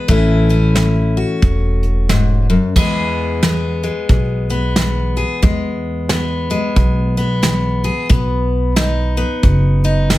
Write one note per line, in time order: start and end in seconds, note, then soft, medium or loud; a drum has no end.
0.08 1.21 A1 medium
0.08 0.70 A2 medium
0.08 0.74 E3 medium
0.08 1.83 A3 medium
0.08 0.49 C#4 medium
0.08 1.17 E4 medium
0.08 kick loud
0.08 closed hi-hat medium
0.49 2.73 C#4 medium
0.49 closed hi-hat medium
0.75 1.37 E3 medium
0.75 snare loud
0.75 closed hi-hat medium
1.17 2.73 F#4 medium
1.42 2.54 E1 medium
1.42 kick medium
1.42 closed hi-hat medium
1.83 closed hi-hat medium
2.09 2.49 G#2 medium
2.09 snare loud
2.09 closed hi-hat medium
2.50 2.76 F#2 medium
2.76 3.88 E2 medium
2.76 3.38 E2 medium
2.76 3.42 E3 medium
2.76 3.83 G#3 medium
2.76 3.43 B3 medium
2.76 5.16 G#4 medium
2.76 kick loud
2.76 crash loud
3.43 4.04 E3 medium
3.43 4.50 B3 medium
3.43 snare loud
3.43 closed hi-hat medium
3.83 5.40 G#3 medium
3.83 closed hi-hat medium
4.09 5.21 B1 medium
4.09 4.71 B2 medium
4.09 kick loud
4.09 closed hi-hat medium
4.49 6.10 B3 medium
4.49 closed hi-hat medium
4.76 5.38 E3 medium
4.76 snare loud
4.76 closed hi-hat medium
5.16 5.40 G#4 medium
5.16 closed hi-hat medium
5.42 6.04 E2 medium
5.42 6.55 E2 medium
5.42 6.49 G#3 medium
5.42 kick loud
5.42 closed hi-hat medium
6.09 6.71 E3 medium
6.09 7.17 B3 medium
6.09 snare loud
6.09 closed hi-hat medium
6.50 8.07 G#3 medium
6.50 closed hi-hat medium
6.76 7.88 B1 medium
6.76 7.38 B2 medium
6.76 kick loud
6.76 closed hi-hat medium
7.17 8.10 B3 medium
7.17 closed hi-hat medium
7.43 8.04 E3 medium
7.43 snare loud
7.43 closed hi-hat medium
7.84 8.07 G#4 medium
7.84 closed hi-hat medium
8.09 9.22 B1 medium
8.09 8.71 B2 medium
8.09 9.17 B3 medium
8.09 kick loud
8.09 closed hi-hat medium
8.76 9.38 D#3 medium
8.76 9.83 D#4 medium
8.76 snare loud
8.76 closed hi-hat medium
9.17 10.18 B3 medium
9.17 closed hi-hat medium
9.43 10.18 F#1 medium
9.43 10.05 F#2 medium
9.43 kick loud
9.43 closed hi-hat medium
9.84 10.18 D#4 medium
9.84 closed hi-hat medium
10.10 10.18 D#3 medium
10.10 snare loud
10.10 closed hi-hat medium